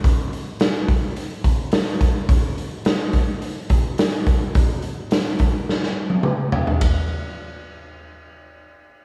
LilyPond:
\new DrumStaff \with { instrumentName = "Drums" } \drummode { \time 4/4 \tempo 4 = 106 <hho bd>8 hho8 <hho sn>8 <hho bd>8 hho8 <hho bd>8 <hho sn>8 <hho bd>8 | <hho bd>8 hho8 <hho sn>8 <hho bd>8 hho8 <hho bd>8 <hho sn>8 <hho bd>8 | <hho bd>8 hho8 <hho sn>8 <hho bd>8 sn16 sn8 tommh16 toml8 tomfh16 tomfh16 | <bd cymr>4 r4 r4 r4 | }